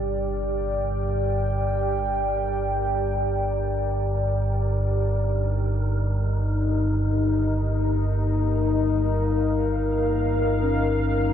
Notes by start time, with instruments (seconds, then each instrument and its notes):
Already playing: synth drone G1 G2, kettle gongs C3, ambient pad G4 D5 G5, synth texture A#4
4.93 ambient pad D#4
6.84 ambient pad A#4
8.49 ambient pad F5
10.63 kettle gongs C#4